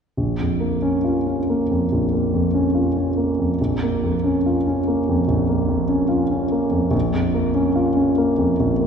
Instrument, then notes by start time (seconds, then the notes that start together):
grand piano
0.17 A#1
0.40 F2
0.60 A#3
0.82 C#4
1.04 F4
1.27 C#4
1.50 A#3
1.71 F2
1.92 A#1
2.13 A#3
2.34 F2
2.54 C#4
2.75 F4
2.97 C#4
3.17 A#3
3.39 F2
3.61 A#1
3.83 A#3
4.04 F2
4.24 C#4
4.46 F4
4.67 C#4
4.87 A#3
5.09 F2
5.28 A#1
5.49 A#3
5.68 F2
5.89 C#4
6.08 F4
6.31 C#4
6.52 A#3
6.71 F2
6.90 A#1
7.13 F2
7.34 A#3
7.55 C#4
7.76 F4
7.96 C#4
8.18 A#3
8.38 F2
8.60 A#1
8.81 A#3